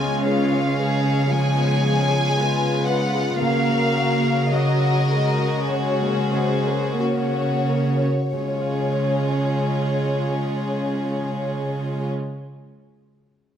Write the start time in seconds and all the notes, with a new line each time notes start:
Already playing: C#3 G#3 B3 C#4 F4 G#4 C#5 F5 G#5
0.00 G#4
0.26 F4 B4 C#5 F5
0.52 F5
0.79 G#4 B4
1.05 G#4
1.31 F3 G#3 G#4 G#5
1.57 B3
1.84 F3 F4
2.09 G#4
2.34 G#3 F4 B4
2.62 F5
2.87 F4 B4 F#5
3.14 G#4
3.39 C#3 A#3 F#4 A#4 F5
3.69 A#3
3.96 F#4
4.24 A#4
4.51 F#3 F#4 A#4 D#5
4.80 F#5
5.08 G#3 A#4
5.39 F#4
5.69 C#4 G#4 C#5
6.01 A#3
6.33 F#4 C5
6.66 A#4
6.99 A#3 C#4 F#4 C#5
7.33 F#5
7.69 A#4
8.02 F#4
8.33 C#3 G#3 C#4 F4 G#4 C#5
8.40 C#4
8.47 F4
8.54 G#4
8.61 F5